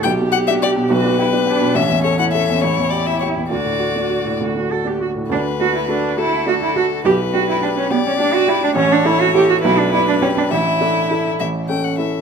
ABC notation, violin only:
X:1
M:6/8
L:1/16
Q:3/8=69
K:D
V:1 name="Violin"
g2 f e d2 B6 | e2 c f e2 c2 d e c2 | d6 z6 | B6 A6 |
B6 d6 | c6 B6 | e6 e2 g f e2 |]